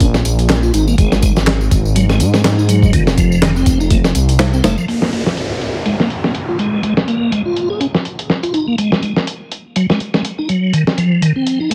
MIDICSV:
0, 0, Header, 1, 5, 480
1, 0, Start_track
1, 0, Tempo, 487805
1, 966, Time_signature, 4, 2, 24, 8
1, 11557, End_track
2, 0, Start_track
2, 0, Title_t, "Tonewheel organ"
2, 0, Program_c, 0, 16
2, 5, Note_on_c, 0, 61, 78
2, 66, Note_off_c, 0, 61, 0
2, 619, Note_on_c, 0, 65, 75
2, 714, Note_off_c, 0, 65, 0
2, 724, Note_on_c, 0, 63, 98
2, 847, Note_off_c, 0, 63, 0
2, 862, Note_on_c, 0, 58, 95
2, 940, Note_off_c, 0, 58, 0
2, 966, Note_on_c, 0, 56, 81
2, 1088, Note_off_c, 0, 56, 0
2, 1101, Note_on_c, 0, 56, 77
2, 1179, Note_off_c, 0, 56, 0
2, 1203, Note_on_c, 0, 56, 76
2, 1306, Note_off_c, 0, 56, 0
2, 1923, Note_on_c, 0, 54, 99
2, 2026, Note_off_c, 0, 54, 0
2, 2060, Note_on_c, 0, 56, 105
2, 2160, Note_off_c, 0, 56, 0
2, 2300, Note_on_c, 0, 56, 77
2, 2379, Note_off_c, 0, 56, 0
2, 2541, Note_on_c, 0, 63, 76
2, 2635, Note_off_c, 0, 63, 0
2, 2648, Note_on_c, 0, 54, 75
2, 2877, Note_off_c, 0, 54, 0
2, 2887, Note_on_c, 0, 51, 104
2, 2988, Note_off_c, 0, 51, 0
2, 3128, Note_on_c, 0, 53, 102
2, 3356, Note_off_c, 0, 53, 0
2, 3366, Note_on_c, 0, 51, 98
2, 3467, Note_off_c, 0, 51, 0
2, 3503, Note_on_c, 0, 60, 83
2, 3729, Note_off_c, 0, 60, 0
2, 3743, Note_on_c, 0, 63, 76
2, 3836, Note_off_c, 0, 63, 0
2, 3848, Note_on_c, 0, 57, 83
2, 3908, Note_off_c, 0, 57, 0
2, 4461, Note_on_c, 0, 60, 77
2, 4555, Note_off_c, 0, 60, 0
2, 4567, Note_on_c, 0, 57, 96
2, 4688, Note_off_c, 0, 57, 0
2, 4701, Note_on_c, 0, 53, 97
2, 4779, Note_off_c, 0, 53, 0
2, 4806, Note_on_c, 0, 58, 74
2, 4928, Note_off_c, 0, 58, 0
2, 4942, Note_on_c, 0, 58, 68
2, 5020, Note_off_c, 0, 58, 0
2, 5045, Note_on_c, 0, 58, 69
2, 5147, Note_off_c, 0, 58, 0
2, 5763, Note_on_c, 0, 56, 91
2, 5866, Note_off_c, 0, 56, 0
2, 5897, Note_on_c, 0, 58, 94
2, 5998, Note_off_c, 0, 58, 0
2, 6139, Note_on_c, 0, 58, 69
2, 6218, Note_off_c, 0, 58, 0
2, 6380, Note_on_c, 0, 65, 68
2, 6475, Note_off_c, 0, 65, 0
2, 6484, Note_on_c, 0, 56, 68
2, 6711, Note_off_c, 0, 56, 0
2, 6723, Note_on_c, 0, 56, 89
2, 6826, Note_off_c, 0, 56, 0
2, 6961, Note_on_c, 0, 58, 90
2, 7193, Note_off_c, 0, 58, 0
2, 7199, Note_on_c, 0, 56, 89
2, 7304, Note_off_c, 0, 56, 0
2, 7335, Note_on_c, 0, 65, 73
2, 7565, Note_off_c, 0, 65, 0
2, 7576, Note_on_c, 0, 68, 70
2, 7673, Note_off_c, 0, 68, 0
2, 7679, Note_on_c, 0, 61, 74
2, 7743, Note_off_c, 0, 61, 0
2, 8295, Note_on_c, 0, 65, 69
2, 8392, Note_off_c, 0, 65, 0
2, 8400, Note_on_c, 0, 63, 93
2, 8525, Note_off_c, 0, 63, 0
2, 8537, Note_on_c, 0, 58, 94
2, 8617, Note_off_c, 0, 58, 0
2, 8640, Note_on_c, 0, 56, 74
2, 8765, Note_off_c, 0, 56, 0
2, 8777, Note_on_c, 0, 56, 69
2, 8857, Note_off_c, 0, 56, 0
2, 8880, Note_on_c, 0, 56, 71
2, 8984, Note_off_c, 0, 56, 0
2, 9603, Note_on_c, 0, 54, 88
2, 9706, Note_off_c, 0, 54, 0
2, 9737, Note_on_c, 0, 56, 93
2, 9839, Note_off_c, 0, 56, 0
2, 9976, Note_on_c, 0, 56, 71
2, 10057, Note_off_c, 0, 56, 0
2, 10218, Note_on_c, 0, 63, 70
2, 10314, Note_off_c, 0, 63, 0
2, 10323, Note_on_c, 0, 54, 70
2, 10554, Note_off_c, 0, 54, 0
2, 10561, Note_on_c, 0, 51, 93
2, 10665, Note_off_c, 0, 51, 0
2, 10800, Note_on_c, 0, 53, 91
2, 11032, Note_off_c, 0, 53, 0
2, 11040, Note_on_c, 0, 51, 95
2, 11144, Note_off_c, 0, 51, 0
2, 11176, Note_on_c, 0, 60, 75
2, 11405, Note_off_c, 0, 60, 0
2, 11416, Note_on_c, 0, 63, 70
2, 11513, Note_off_c, 0, 63, 0
2, 11518, Note_on_c, 0, 57, 78
2, 11557, Note_off_c, 0, 57, 0
2, 11557, End_track
3, 0, Start_track
3, 0, Title_t, "Detuned saw bass"
3, 0, Program_c, 1, 39
3, 0, Note_on_c, 1, 34, 98
3, 216, Note_off_c, 1, 34, 0
3, 248, Note_on_c, 1, 34, 91
3, 697, Note_off_c, 1, 34, 0
3, 727, Note_on_c, 1, 32, 77
3, 930, Note_off_c, 1, 32, 0
3, 966, Note_on_c, 1, 32, 102
3, 1656, Note_off_c, 1, 32, 0
3, 1685, Note_on_c, 1, 32, 100
3, 2168, Note_on_c, 1, 44, 85
3, 2183, Note_off_c, 1, 32, 0
3, 2857, Note_off_c, 1, 44, 0
3, 2886, Note_on_c, 1, 29, 103
3, 3576, Note_off_c, 1, 29, 0
3, 3606, Note_on_c, 1, 29, 102
3, 4056, Note_off_c, 1, 29, 0
3, 4089, Note_on_c, 1, 36, 102
3, 4538, Note_off_c, 1, 36, 0
3, 4569, Note_on_c, 1, 29, 97
3, 4679, Note_off_c, 1, 29, 0
3, 11557, End_track
4, 0, Start_track
4, 0, Title_t, "Downlifter"
4, 0, Program_c, 2, 103
4, 4806, Note_on_c, 2, 60, 69
4, 8646, Note_off_c, 2, 60, 0
4, 11557, End_track
5, 0, Start_track
5, 0, Title_t, "Drums"
5, 4, Note_on_c, 9, 36, 113
5, 4, Note_on_c, 9, 42, 88
5, 8, Note_on_c, 9, 54, 41
5, 103, Note_off_c, 9, 36, 0
5, 103, Note_off_c, 9, 42, 0
5, 106, Note_off_c, 9, 54, 0
5, 141, Note_on_c, 9, 38, 47
5, 141, Note_on_c, 9, 54, 27
5, 239, Note_off_c, 9, 38, 0
5, 239, Note_off_c, 9, 54, 0
5, 246, Note_on_c, 9, 54, 68
5, 248, Note_on_c, 9, 42, 68
5, 345, Note_off_c, 9, 54, 0
5, 346, Note_off_c, 9, 42, 0
5, 382, Note_on_c, 9, 42, 42
5, 383, Note_on_c, 9, 54, 29
5, 480, Note_off_c, 9, 42, 0
5, 481, Note_off_c, 9, 54, 0
5, 486, Note_on_c, 9, 39, 101
5, 486, Note_on_c, 9, 54, 39
5, 488, Note_on_c, 9, 38, 114
5, 488, Note_on_c, 9, 42, 82
5, 584, Note_off_c, 9, 39, 0
5, 584, Note_off_c, 9, 54, 0
5, 587, Note_off_c, 9, 38, 0
5, 587, Note_off_c, 9, 42, 0
5, 620, Note_on_c, 9, 54, 27
5, 718, Note_off_c, 9, 54, 0
5, 725, Note_on_c, 9, 54, 68
5, 727, Note_on_c, 9, 42, 64
5, 824, Note_off_c, 9, 54, 0
5, 826, Note_off_c, 9, 42, 0
5, 861, Note_on_c, 9, 54, 29
5, 959, Note_off_c, 9, 54, 0
5, 966, Note_on_c, 9, 36, 108
5, 966, Note_on_c, 9, 42, 86
5, 967, Note_on_c, 9, 54, 42
5, 1064, Note_off_c, 9, 36, 0
5, 1064, Note_off_c, 9, 42, 0
5, 1066, Note_off_c, 9, 54, 0
5, 1102, Note_on_c, 9, 38, 45
5, 1102, Note_on_c, 9, 54, 28
5, 1200, Note_off_c, 9, 38, 0
5, 1200, Note_off_c, 9, 54, 0
5, 1205, Note_on_c, 9, 54, 71
5, 1206, Note_on_c, 9, 36, 92
5, 1208, Note_on_c, 9, 42, 71
5, 1304, Note_off_c, 9, 54, 0
5, 1305, Note_off_c, 9, 36, 0
5, 1306, Note_off_c, 9, 42, 0
5, 1341, Note_on_c, 9, 54, 32
5, 1344, Note_on_c, 9, 38, 42
5, 1439, Note_off_c, 9, 54, 0
5, 1443, Note_off_c, 9, 38, 0
5, 1445, Note_on_c, 9, 39, 95
5, 1445, Note_on_c, 9, 54, 39
5, 1447, Note_on_c, 9, 38, 112
5, 1447, Note_on_c, 9, 42, 83
5, 1544, Note_off_c, 9, 39, 0
5, 1544, Note_off_c, 9, 54, 0
5, 1545, Note_off_c, 9, 38, 0
5, 1545, Note_off_c, 9, 42, 0
5, 1583, Note_on_c, 9, 54, 30
5, 1681, Note_off_c, 9, 54, 0
5, 1686, Note_on_c, 9, 36, 98
5, 1687, Note_on_c, 9, 42, 71
5, 1687, Note_on_c, 9, 54, 72
5, 1784, Note_off_c, 9, 36, 0
5, 1785, Note_off_c, 9, 42, 0
5, 1785, Note_off_c, 9, 54, 0
5, 1825, Note_on_c, 9, 54, 29
5, 1923, Note_off_c, 9, 54, 0
5, 1927, Note_on_c, 9, 42, 84
5, 1929, Note_on_c, 9, 54, 41
5, 2026, Note_off_c, 9, 42, 0
5, 2027, Note_off_c, 9, 54, 0
5, 2062, Note_on_c, 9, 38, 45
5, 2065, Note_on_c, 9, 54, 28
5, 2160, Note_off_c, 9, 38, 0
5, 2163, Note_off_c, 9, 54, 0
5, 2165, Note_on_c, 9, 42, 66
5, 2168, Note_on_c, 9, 54, 70
5, 2263, Note_off_c, 9, 42, 0
5, 2267, Note_off_c, 9, 54, 0
5, 2300, Note_on_c, 9, 38, 51
5, 2305, Note_on_c, 9, 54, 31
5, 2398, Note_off_c, 9, 38, 0
5, 2404, Note_off_c, 9, 54, 0
5, 2404, Note_on_c, 9, 38, 115
5, 2404, Note_on_c, 9, 42, 89
5, 2411, Note_on_c, 9, 39, 96
5, 2411, Note_on_c, 9, 54, 40
5, 2502, Note_off_c, 9, 38, 0
5, 2502, Note_off_c, 9, 42, 0
5, 2510, Note_off_c, 9, 39, 0
5, 2510, Note_off_c, 9, 54, 0
5, 2548, Note_on_c, 9, 54, 28
5, 2645, Note_on_c, 9, 42, 66
5, 2646, Note_off_c, 9, 54, 0
5, 2651, Note_on_c, 9, 54, 67
5, 2743, Note_off_c, 9, 42, 0
5, 2750, Note_off_c, 9, 54, 0
5, 2780, Note_on_c, 9, 36, 96
5, 2787, Note_on_c, 9, 54, 30
5, 2878, Note_off_c, 9, 36, 0
5, 2885, Note_off_c, 9, 54, 0
5, 2885, Note_on_c, 9, 36, 114
5, 2885, Note_on_c, 9, 42, 87
5, 2891, Note_on_c, 9, 54, 45
5, 2983, Note_off_c, 9, 36, 0
5, 2983, Note_off_c, 9, 42, 0
5, 2989, Note_off_c, 9, 54, 0
5, 3022, Note_on_c, 9, 38, 56
5, 3028, Note_on_c, 9, 54, 28
5, 3120, Note_off_c, 9, 38, 0
5, 3125, Note_on_c, 9, 36, 94
5, 3125, Note_on_c, 9, 42, 66
5, 3126, Note_off_c, 9, 54, 0
5, 3130, Note_on_c, 9, 54, 71
5, 3223, Note_off_c, 9, 36, 0
5, 3223, Note_off_c, 9, 42, 0
5, 3229, Note_off_c, 9, 54, 0
5, 3266, Note_on_c, 9, 54, 32
5, 3364, Note_off_c, 9, 54, 0
5, 3365, Note_on_c, 9, 38, 111
5, 3365, Note_on_c, 9, 42, 86
5, 3371, Note_on_c, 9, 39, 100
5, 3371, Note_on_c, 9, 54, 42
5, 3463, Note_off_c, 9, 38, 0
5, 3463, Note_off_c, 9, 42, 0
5, 3469, Note_off_c, 9, 39, 0
5, 3469, Note_off_c, 9, 54, 0
5, 3505, Note_on_c, 9, 54, 31
5, 3603, Note_off_c, 9, 54, 0
5, 3603, Note_on_c, 9, 42, 70
5, 3604, Note_on_c, 9, 36, 92
5, 3608, Note_on_c, 9, 54, 75
5, 3701, Note_off_c, 9, 42, 0
5, 3702, Note_off_c, 9, 36, 0
5, 3707, Note_off_c, 9, 54, 0
5, 3744, Note_on_c, 9, 54, 31
5, 3842, Note_on_c, 9, 42, 88
5, 3843, Note_off_c, 9, 54, 0
5, 3844, Note_on_c, 9, 36, 108
5, 3847, Note_on_c, 9, 54, 42
5, 3941, Note_off_c, 9, 42, 0
5, 3942, Note_off_c, 9, 36, 0
5, 3945, Note_off_c, 9, 54, 0
5, 3980, Note_on_c, 9, 38, 48
5, 3982, Note_on_c, 9, 54, 29
5, 4078, Note_off_c, 9, 38, 0
5, 4081, Note_off_c, 9, 54, 0
5, 4083, Note_on_c, 9, 42, 66
5, 4086, Note_on_c, 9, 54, 72
5, 4181, Note_off_c, 9, 42, 0
5, 4185, Note_off_c, 9, 54, 0
5, 4219, Note_on_c, 9, 42, 45
5, 4222, Note_on_c, 9, 54, 31
5, 4318, Note_off_c, 9, 42, 0
5, 4321, Note_off_c, 9, 54, 0
5, 4324, Note_on_c, 9, 38, 113
5, 4324, Note_on_c, 9, 42, 86
5, 4325, Note_on_c, 9, 39, 101
5, 4325, Note_on_c, 9, 54, 44
5, 4422, Note_off_c, 9, 38, 0
5, 4422, Note_off_c, 9, 42, 0
5, 4423, Note_off_c, 9, 39, 0
5, 4423, Note_off_c, 9, 54, 0
5, 4461, Note_on_c, 9, 54, 29
5, 4559, Note_off_c, 9, 54, 0
5, 4564, Note_on_c, 9, 54, 72
5, 4566, Note_on_c, 9, 38, 102
5, 4566, Note_on_c, 9, 42, 79
5, 4663, Note_off_c, 9, 54, 0
5, 4664, Note_off_c, 9, 38, 0
5, 4664, Note_off_c, 9, 42, 0
5, 4701, Note_on_c, 9, 54, 30
5, 4800, Note_off_c, 9, 54, 0
5, 4805, Note_on_c, 9, 42, 79
5, 4903, Note_off_c, 9, 42, 0
5, 4939, Note_on_c, 9, 38, 41
5, 5038, Note_off_c, 9, 38, 0
5, 5045, Note_on_c, 9, 42, 62
5, 5144, Note_off_c, 9, 42, 0
5, 5180, Note_on_c, 9, 38, 39
5, 5278, Note_off_c, 9, 38, 0
5, 5285, Note_on_c, 9, 42, 76
5, 5383, Note_off_c, 9, 42, 0
5, 5524, Note_on_c, 9, 42, 65
5, 5622, Note_off_c, 9, 42, 0
5, 5763, Note_on_c, 9, 42, 79
5, 5861, Note_off_c, 9, 42, 0
5, 5902, Note_on_c, 9, 38, 41
5, 6000, Note_off_c, 9, 38, 0
5, 6005, Note_on_c, 9, 42, 61
5, 6104, Note_off_c, 9, 42, 0
5, 6142, Note_on_c, 9, 38, 45
5, 6240, Note_off_c, 9, 38, 0
5, 6245, Note_on_c, 9, 42, 79
5, 6343, Note_off_c, 9, 42, 0
5, 6485, Note_on_c, 9, 42, 61
5, 6583, Note_off_c, 9, 42, 0
5, 6723, Note_on_c, 9, 42, 82
5, 6822, Note_off_c, 9, 42, 0
5, 6860, Note_on_c, 9, 38, 51
5, 6958, Note_off_c, 9, 38, 0
5, 6965, Note_on_c, 9, 42, 61
5, 7064, Note_off_c, 9, 42, 0
5, 7205, Note_on_c, 9, 42, 78
5, 7303, Note_off_c, 9, 42, 0
5, 7444, Note_on_c, 9, 42, 63
5, 7542, Note_off_c, 9, 42, 0
5, 7682, Note_on_c, 9, 42, 72
5, 7781, Note_off_c, 9, 42, 0
5, 7818, Note_on_c, 9, 38, 36
5, 7916, Note_off_c, 9, 38, 0
5, 7923, Note_on_c, 9, 42, 56
5, 8021, Note_off_c, 9, 42, 0
5, 8059, Note_on_c, 9, 42, 74
5, 8157, Note_off_c, 9, 42, 0
5, 8164, Note_on_c, 9, 38, 36
5, 8263, Note_off_c, 9, 38, 0
5, 8299, Note_on_c, 9, 42, 58
5, 8398, Note_off_c, 9, 42, 0
5, 8403, Note_on_c, 9, 42, 60
5, 8501, Note_off_c, 9, 42, 0
5, 8642, Note_on_c, 9, 42, 81
5, 8741, Note_off_c, 9, 42, 0
5, 8778, Note_on_c, 9, 38, 42
5, 8876, Note_off_c, 9, 38, 0
5, 8882, Note_on_c, 9, 42, 64
5, 8980, Note_off_c, 9, 42, 0
5, 9018, Note_on_c, 9, 38, 40
5, 9117, Note_off_c, 9, 38, 0
5, 9124, Note_on_c, 9, 42, 77
5, 9222, Note_off_c, 9, 42, 0
5, 9363, Note_on_c, 9, 42, 64
5, 9462, Note_off_c, 9, 42, 0
5, 9603, Note_on_c, 9, 42, 82
5, 9701, Note_off_c, 9, 42, 0
5, 9739, Note_on_c, 9, 38, 41
5, 9838, Note_off_c, 9, 38, 0
5, 9842, Note_on_c, 9, 42, 64
5, 9941, Note_off_c, 9, 42, 0
5, 9978, Note_on_c, 9, 38, 45
5, 10077, Note_off_c, 9, 38, 0
5, 10083, Note_on_c, 9, 42, 83
5, 10181, Note_off_c, 9, 42, 0
5, 10322, Note_on_c, 9, 42, 63
5, 10420, Note_off_c, 9, 42, 0
5, 10563, Note_on_c, 9, 42, 80
5, 10661, Note_off_c, 9, 42, 0
5, 10699, Note_on_c, 9, 38, 51
5, 10797, Note_off_c, 9, 38, 0
5, 10802, Note_on_c, 9, 42, 64
5, 10901, Note_off_c, 9, 42, 0
5, 11043, Note_on_c, 9, 42, 81
5, 11142, Note_off_c, 9, 42, 0
5, 11282, Note_on_c, 9, 42, 65
5, 11380, Note_off_c, 9, 42, 0
5, 11524, Note_on_c, 9, 42, 84
5, 11557, Note_off_c, 9, 42, 0
5, 11557, End_track
0, 0, End_of_file